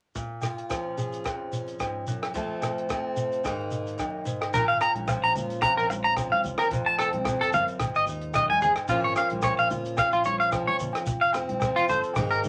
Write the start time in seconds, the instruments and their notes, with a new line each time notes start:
0.15 steel-string acoustic guitar A#2, kick, closed hi-hat, shekere
0.41 steel-string acoustic guitar F4, cross-stick, closed hi-hat, low agogo, shekere
0.58 closed hi-hat
0.70 steel-string acoustic guitar F3 C#4, kick, cross-stick, closed hi-hat, low agogo, shekere
0.98 steel-string acoustic guitar G#4, closed hi-hat, shekere
1.12 closed hi-hat, shekere
1.24 steel-string acoustic guitar F2, kick, cross-stick, closed hi-hat, low agogo, shekere
1.52 steel-string acoustic guitar C#4, closed hi-hat, shekere
1.68 closed hi-hat, shekere
1.79 steel-string acoustic guitar G#2, kick, cross-stick, closed hi-hat, low agogo, shekere
2.07 steel-string acoustic guitar F#2, closed hi-hat, shekere
2.22 cross-stick, closed hi-hat, low agogo
2.34 steel-string acoustic guitar F2 F3 A3 C4 A4, kick, closed hi-hat, shekere
2.61 steel-string acoustic guitar A4, cross-stick, closed hi-hat, low agogo, shekere
2.78 closed hi-hat
2.89 steel-string acoustic guitar F3 C4, kick, cross-stick, closed hi-hat, low agogo, shekere
3.16 steel-string acoustic guitar A4, closed hi-hat, shekere
3.32 closed hi-hat, shekere
3.44 steel-string acoustic guitar G#2 D#3 A#3 D#4 G#4, kick, cross-stick, closed hi-hat, low agogo, shekere
3.71 steel-string acoustic guitar G#4, closed hi-hat, shekere
3.86 closed hi-hat, shekere
3.98 steel-string acoustic guitar F#2, kick, cross-stick, closed hi-hat, low agogo, shekere
4.25 steel-string acoustic guitar G#2, closed hi-hat, shekere
4.41 cross-stick, closed hi-hat, low agogo
4.54 fingered electric bass A#1, steel-string acoustic guitar A#2, clean electric guitar A#4, kick, closed hi-hat, shekere
4.68 clean electric guitar F5
4.80 steel-string acoustic guitar C#4, clean electric guitar A#5, cross-stick, closed hi-hat, low agogo, shekere
4.95 fingered electric bass A#1, closed hi-hat, high conga
5.07 steel-string acoustic guitar F3, muted clean electric guitar stroke, kick, cross-stick, closed hi-hat, low agogo, shekere
5.23 fingered electric bass A#1, clean electric guitar A#5, shekere
5.35 fingered electric bass A#2, steel-string acoustic guitar F4, closed hi-hat, high conga, low conga, shekere
5.50 closed hi-hat, shekere
5.61 steel-string acoustic guitar F2, clean electric guitar A#5, kick, cross-stick, closed hi-hat, low agogo, shekere
5.77 fingered electric bass A#1, clean electric guitar A#4, shekere
5.90 muted clean electric guitar stroke, closed hi-hat, high conga, shekere
6.04 clean electric guitar A#5, closed hi-hat
6.17 steel-string acoustic guitar F3, kick, cross-stick, closed hi-hat, low agogo, shekere
6.32 clean electric guitar F5, high conga
6.44 fingered electric bass C2, closed hi-hat, low conga, shekere
6.58 clean electric guitar A#4, cross-stick, closed hi-hat, low agogo, shekere
6.71 fingered electric bass F1, steel-string acoustic guitar F2, kick, closed hi-hat, shekere
6.86 fingered electric bass F1, clean electric guitar A5
6.98 steel-string acoustic guitar C4, clean electric guitar A4, cross-stick, closed hi-hat, low agogo, shekere
7.13 fingered electric bass C2, closed hi-hat, high conga
7.24 steel-string acoustic guitar F2, kick, cross-stick, closed hi-hat, low agogo, shekere
7.41 fingered electric bass F1, clean electric guitar A4, shekere
7.53 fingered electric bass G1, steel-string acoustic guitar F#2, clean electric guitar F5, closed hi-hat, high conga, low conga, shekere
7.68 closed hi-hat, shekere
7.79 fingered electric bass G#1, steel-string acoustic guitar G#2, kick, cross-stick, closed hi-hat, low agogo, shekere
7.94 fingered electric bass G#1, clean electric guitar D#5, shekere
8.06 fingered electric bass D#2, steel-string acoustic guitar D#4, closed hi-hat, shekere
8.21 closed hi-hat
8.34 steel-string acoustic guitar F#2, clean electric guitar D#5, kick, cross-stick, closed hi-hat, low agogo, shekere
8.50 clean electric guitar G#5, high conga
8.61 steel-string acoustic guitar G#2, clean electric guitar G#4, closed hi-hat, low conga, shekere
8.76 cross-stick, closed hi-hat, low agogo, shekere
8.88 fingered electric bass A#1, steel-string acoustic guitar A#2 F3 A#3 C#4, clean electric guitar F4, kick, closed hi-hat, shekere
8.92 steel-string acoustic guitar F4
9.03 fingered electric bass G#1, clean electric guitar C#5
9.16 steel-string acoustic guitar C#4, clean electric guitar F5, cross-stick, closed hi-hat, low agogo, shekere
9.30 fingered electric bass A#1, closed hi-hat, high conga
9.42 steel-string acoustic guitar F3, clean electric guitar C#5, kick, cross-stick, closed hi-hat, low agogo, shekere
9.58 fingered electric bass A#1, clean electric guitar F5, shekere
9.70 fingered electric bass A#2, steel-string acoustic guitar F4, closed hi-hat, high conga, low conga, shekere
9.85 closed hi-hat, shekere
9.97 steel-string acoustic guitar F2, clean electric guitar F5, kick, cross-stick, closed hi-hat, low agogo, shekere
10.12 fingered electric bass A#1, clean electric guitar F4, shekere
10.24 clean electric guitar C#5, closed hi-hat, high conga, shekere
10.40 clean electric guitar F5, closed hi-hat
10.52 steel-string acoustic guitar F3, kick, cross-stick, closed hi-hat, low agogo, shekere
10.67 clean electric guitar C#5, high conga
10.79 fingered electric bass A#2, closed hi-hat, low conga, shekere
10.93 cross-stick, closed hi-hat, low agogo, shekere
11.06 fingered electric bass F1, muted steel-string acoustic guitar stroke, kick, closed hi-hat, shekere
11.21 fingered electric bass F1, clean electric guitar F5
11.33 steel-string acoustic guitar C4, muted clean electric guitar stroke, cross-stick, closed hi-hat, low agogo, shekere
11.49 fingered electric bass C2, closed hi-hat, high conga
11.60 steel-string acoustic guitar F3, kick, cross-stick, closed hi-hat, low agogo, shekere
11.76 fingered electric bass F1, clean electric guitar F4, shekere
11.89 fingered electric bass G1, steel-string acoustic guitar A4, clean electric guitar C5, closed hi-hat, high conga, low conga, shekere
12.03 closed hi-hat, shekere
12.14 fingered electric bass G#1, steel-string acoustic guitar G#2 D#3, kick, cross-stick, closed hi-hat, low agogo, shekere
12.18 steel-string acoustic guitar A#3 D#4 G#4
12.30 fingered electric bass G#1, clean electric guitar A#4, shekere
12.44 fingered electric bass D#2, steel-string acoustic guitar D#4, closed hi-hat, high conga, low conga, shekere